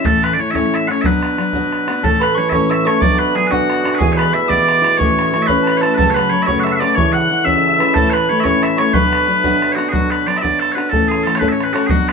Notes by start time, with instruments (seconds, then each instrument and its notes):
0.04 steel-string acoustic guitar A2 E3 A3 C#4 E4, bagpipes A4, bodhran
0.14 bodhran
0.23 bagpipes B4, bodhran
0.34 steel-string acoustic guitar E3, bagpipes D5
0.38 steel-string acoustic guitar A3 C#4 E4, bagpipes C#5
0.51 steel-string acoustic guitar A2 E3 A3 C#4 E4, bagpipes E5
0.55 bagpipes C#5, bodhran
0.74 bagpipes E5, bodhran
0.87 steel-string acoustic guitar A3 C#4 E4, bagpipes C#5 F#5, bodhran
1.01 steel-string acoustic guitar B2 F#3 B3 D4 F#4, bagpipes E5, bodhran
1.06 bagpipes B4
1.14 bodhran
1.23 bodhran
1.38 steel-string acoustic guitar F#3 B3 D4 F#4, bodhran
1.53 steel-string acoustic guitar B2 F#3 B3 D4 F#4, bodhran
1.72 bodhran
1.87 steel-string acoustic guitar B3 D4 F#4, bodhran
2.03 steel-string acoustic guitar A2 E3 A3 C#4 A4, bagpipes A4, hammered dulcimer A4, tin whistle A5, bodhran
2.12 bodhran
2.20 hammered dulcimer B4, bagpipes B4, tin whistle B5, bodhran
2.35 steel-string acoustic guitar E3 A3 C#4 A4, hammered dulcimer C#5, bagpipes C#5, tin whistle C#6
2.49 steel-string acoustic guitar A3 C#4 A4, bagpipes C#5 E5, tin whistle C#6, bodhran
2.54 steel-string acoustic guitar A2 E3, hammered dulcimer C#5
2.70 hammered dulcimer E5, bagpipes E5, tin whistle E6, bodhran
2.85 steel-string acoustic guitar A3 C#4 A4, hammered dulcimer C#5, bagpipes C#5, tin whistle C#6, bodhran
3.01 steel-string acoustic guitar B2 F#3 B3 D4 F#4, hammered dulcimer D5, bagpipes D5, tin whistle D6, bodhran
3.11 bodhran
3.18 hammered dulcimer B4, bagpipes B4, tin whistle B5
3.35 steel-string acoustic guitar F#3 B3 D4 F#4, hammered dulcimer G#4, bagpipes G#4, tin whistle G#5
3.47 steel-string acoustic guitar F#4, hammered dulcimer F#4, bagpipes F#4 B4
3.51 steel-string acoustic guitar B2 F#3 B3 D4, tin whistle F#5, bodhran
3.70 bodhran
3.84 steel-string acoustic guitar B3 D4 F#4, bodhran
3.95 bagpipes G#4 B4
4.00 steel-string acoustic guitar E2 B2 E3 G#3 B3 E4, hammered dulcimer G#4, tin whistle G#5, bodhran
4.10 bagpipes C#5, bodhran
4.17 bagpipes B4, hammered dulcimer B4, tin whistle B5, bodhran
4.33 steel-string acoustic guitar E3 G#3 B3 E4, hammered dulcimer E5, bagpipes E5, tin whistle E6
4.48 steel-string acoustic guitar E2 B2 E3 G#3 B3 E4, hammered dulcimer D5, bagpipes D5, tin whistle D6, bodhran
4.62 hammered dulcimer D5
4.69 bodhran
4.73 hammered dulcimer D5
4.82 steel-string acoustic guitar E3 G#3 B3 E4, hammered dulcimer D5, bodhran
4.97 steel-string acoustic guitar A2 E3 A3 C#4 E4, bagpipes C#5, hammered dulcimer C#5, tin whistle C#6, bodhran
5.19 bodhran
5.32 steel-string acoustic guitar E3 A3 C#4 E4, hammered dulcimer C#5, tin whistle C#6, bodhran
5.42 bagpipes E5
5.46 steel-string acoustic guitar A2 E3 A3 C#4 E4, bagpipes B4, hammered dulcimer B4, tin whistle B5, bodhran
5.62 tin whistle A5
5.67 tin whistle B5, bodhran
5.77 hammered dulcimer A4, bagpipes A4 C#5
5.82 steel-string acoustic guitar A3 C#4 E4, tin whistle A5, bodhran
5.94 steel-string acoustic guitar F#2 C#3, hammered dulcimer A4, bagpipes A4 B4, tin whistle A5
5.98 steel-string acoustic guitar F#3 A3 C#4 F#4, bodhran
6.08 bagpipes C#5, bodhran
6.13 hammered dulcimer B4, bagpipes B4, tin whistle B5, bodhran
6.29 steel-string acoustic guitar F#3 A3 C#4 F#4, bagpipes C#5, hammered dulcimer C#5
6.42 hammered dulcimer C#5, bagpipes C#5 E5, tin whistle C#6
6.48 steel-string acoustic guitar F#2 C#3 F#3 A3 C#4 F#4, bodhran
6.60 hammered dulcimer E5, bagpipes E5 F#5, tin whistle E6
6.67 bodhran
6.72 bagpipes E5 F#5
6.79 steel-string acoustic guitar F#3 A3 C#4 F#4, bagpipes D5, hammered dulcimer D5, tin whistle D6, bodhran
6.95 steel-string acoustic guitar C#3 E3 G#3 C#4 E4, bagpipes C#5, hammered dulcimer C#5, tin whistle C#6, bodhran
7.12 bagpipes F#5, hammered dulcimer F#5, tin whistle F#6
7.30 steel-string acoustic guitar E3 G#3 C#4 E4
7.44 steel-string acoustic guitar C#3 E3 G#3 C#4 E4, hammered dulcimer E5, bagpipes E5, tin whistle E6, bodhran
7.56 hammered dulcimer E5
7.68 hammered dulcimer E5
7.78 steel-string acoustic guitar G#3 C#4 E4, hammered dulcimer B4, bodhran
7.93 steel-string acoustic guitar A2 E3 A3 C#4 E4, hammered dulcimer A4, bagpipes A4, tin whistle A5, bodhran
8.10 hammered dulcimer B4, bagpipes B4 C#5, tin whistle B5
8.14 bodhran
8.29 steel-string acoustic guitar E3 A3 C#4 E4, bagpipes C#5, hammered dulcimer C#5
8.40 steel-string acoustic guitar E4, bagpipes C#5 E5, tin whistle C#6
8.44 steel-string acoustic guitar A2 E3 A3 C#4, hammered dulcimer C#5, bodhran
8.63 bagpipes E5, hammered dulcimer E5, bodhran
8.77 steel-string acoustic guitar A3 C#4 E4, bagpipes C#5, hammered dulcimer C#5, tin whistle C#6, bodhran
8.93 steel-string acoustic guitar B2 F#3 B3 D4 F#4, bagpipes B4, hammered dulcimer B4, tin whistle B5, bodhran
9.03 bodhran
9.13 bodhran
9.27 steel-string acoustic guitar F#3 B3 D4 F#4
9.44 steel-string acoustic guitar B2 F#3 B3 D4 F#4, bodhran
9.62 bodhran
9.72 bagpipes F#4 C#5
9.77 steel-string acoustic guitar B3 D4 F#4, bodhran
9.89 steel-string acoustic guitar B2 F#3 B3, bagpipes F#4 G#4
9.93 steel-string acoustic guitar D4 F#4, bodhran
10.11 bagpipes B4, bodhran
10.26 steel-string acoustic guitar F#3 B3 D4 F#4, bagpipes D5, bodhran
10.36 bagpipes E5, bodhran
10.42 steel-string acoustic guitar B2 F#3 B3 D4 F#4, bagpipes D5, bodhran
10.59 bagpipes A4, bodhran
10.72 bagpipes B4 C#5
10.76 steel-string acoustic guitar B3 D4 F#4, bodhran
10.89 steel-string acoustic guitar A2 E3 A3 C#4 A4, bagpipes A4, bodhran
11.08 bagpipes G#4, bodhran
11.23 steel-string acoustic guitar E3 A3 C#4 A4, bagpipes A4, bodhran
11.35 bagpipes C#5, bodhran
11.39 steel-string acoustic guitar A2 E3 A3 C#4 A4, bagpipes B4, bodhran
11.48 bagpipes C#5 E5
11.60 bagpipes B4, bodhran
11.73 steel-string acoustic guitar A3 C#4 A4, bagpipes F#4, bodhran
11.87 steel-string acoustic guitar B2 F#3 B3 D4, bagpipes F#4 G#4, bodhran
11.91 steel-string acoustic guitar F#4
12.09 bagpipes B4, bodhran